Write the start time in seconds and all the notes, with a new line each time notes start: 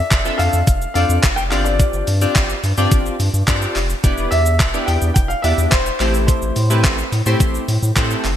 Already playing: E5
0.11 F1, kick, clap, closed hi-hat, shaker
0.25 C4 D4 F4 A4 E5, shaker
0.38 F2 F5, open hi-hat, shaker
0.53 F2, shaker
0.67 F1, kick, closed hi-hat, shaker
0.82 shaker
0.94 F2 C4 D4 F4 A4 D5 F5, open hi-hat, shaker
1.09 F2, shaker
1.23 F1, kick, clap, closed hi-hat, shaker
1.36 G5, shaker
1.50 G1 C4 D4 F4 G4 D5 F5, clap, open hi-hat, shaker
1.64 D5, shaker
1.80 kick, closed hi-hat, shaker
1.93 G1, shaker
2.07 G2, open hi-hat, shaker
2.21 C4 D4 F4 G4 D5, shaker
2.36 G1, kick, clap, closed hi-hat, shaker
2.50 shaker
2.64 G2, open hi-hat, shaker
2.77 G2 C4 D4 F4 G4 D5, shaker
2.91 G1, kick, closed hi-hat, shaker
3.06 shaker
3.20 G2, open hi-hat, shaker
3.34 G2, shaker
3.47 G2 C4 D4 F4 G4 D5, kick, clap, closed hi-hat, shaker
3.62 shaker
3.76 F1, clap, open hi-hat, shaker
3.90 shaker
4.03 E1 B3 D4 E4 G4 D5, kick, closed hi-hat, shaker
4.18 E1, shaker
4.31 E2 E5, open hi-hat, shaker
4.46 shaker
4.60 E1, kick, clap, closed hi-hat, shaker
4.74 B3 D4 E4 G4 D5, shaker
4.86 E2 G5, open hi-hat, shaker
5.02 E2, shaker
5.14 E1 G5, kick, closed hi-hat, shaker
5.28 F5, shaker
5.42 E2 B3 D4 E4 G4 D5 E5, open hi-hat, shaker
5.58 E2, shaker
5.71 E1 C5, kick, clap, closed hi-hat, shaker
5.86 shaker
6.00 A1 A3 C4 E4 G4 C5, clap, open hi-hat, shaker
6.14 shaker
6.27 C5, kick, closed hi-hat, shaker
6.42 A1, shaker
6.56 A2, open hi-hat, shaker
6.70 A3 C4 E4 G4 B4, shaker
6.84 A1, kick, clap, closed hi-hat, shaker
6.98 shaker
7.12 A2, open hi-hat, shaker
7.26 A2 A3 C4 E4 G4 C5, shaker
7.40 A1, kick, closed hi-hat, shaker
7.55 shaker
7.68 A2, open hi-hat, shaker
7.83 A2, shaker
7.96 A2 A3 C4 E4 G4 C5, kick, clap, closed hi-hat, shaker
8.11 shaker
8.24 F#1, clap, open hi-hat, shaker